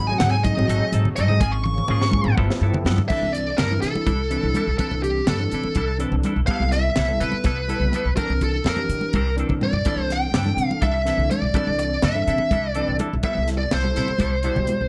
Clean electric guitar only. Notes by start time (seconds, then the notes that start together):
0.21 F#3 C4 D#4 A4
0.70 F#3 C4 D#4 A4
0.94 C4 D#4 A4
1.19 F#3 C4 D#4 A4
1.42 F3 A#3 F4 G#4
1.90 F3 A#3 F4 G#4
2.38 F3 B3 E4 A4
2.63 B3 E4 A4
2.86 F3 B3 E4 A4
3.11 G3 D4 E4 A4
3.59 G3 D4 E4 A4
4.07 G3 D4 E4 A4
4.31 D4 E4 A4
4.56 G3 D4 E4 A4
4.80 G3 D4 E4 A4
5.28 G3 D4 E4 A4
5.53 D4 E4 A4
5.76 G3 D4 E4 A4
6.00 D4 E4 A4
6.25 G3 D4 E4 A4
6.50 G3 B3 E4 A4
6.97 G3 B3 E4 A4
7.21 B3 E4 A4
7.46 G3 B3 E4 A4
7.70 B3 E4 A4
7.94 G3 B3 E4 A4
8.17 E3 C4 D4 A4
8.66 E3 C4 D4 A4
9.15 E3 C4 D4 A4
9.39 C4 D4 A4
9.86 G3 D4 E4 A4
10.34 G3 D4 E4 A4
10.81 G3 D4 E4 A4
11.07 D4 E4 A4
11.55 G3 D4 E4 A4
12.03 G3 D4 E4 A4
12.28 D4 E4 A4
12.52 G3 D4 E4 A4
12.75 D4 E4 A4
13.00 G3 D4 E4 A4
13.24 G3 B3 E4 A4
13.72 G3 B3 E4 A4
13.96 B3 E4 A4
14.20 G3 B3 E4 A4
14.44 B3 E4 A4